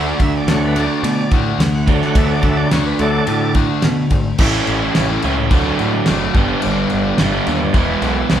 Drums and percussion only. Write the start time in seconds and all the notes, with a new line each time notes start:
0.20 kick, ride
0.48 snare, ride
0.76 ride
1.04 ride
1.31 kick, ride
1.60 snare, ride
1.88 kick, ride
2.02 snare
2.15 kick, ride
2.43 kick, ride
2.71 snare, ride
2.99 ride
3.27 ride
3.55 kick, ride
3.82 snare, ride
4.11 kick, ride
4.38 kick, crash
4.67 crash
4.95 snare, crash
5.22 crash
5.51 kick, crash
5.79 crash
6.06 snare, crash
6.34 kick, crash
6.62 crash
6.90 crash
7.18 snare, crash
7.47 crash
7.74 kick, crash
8.02 crash
8.30 snare, crash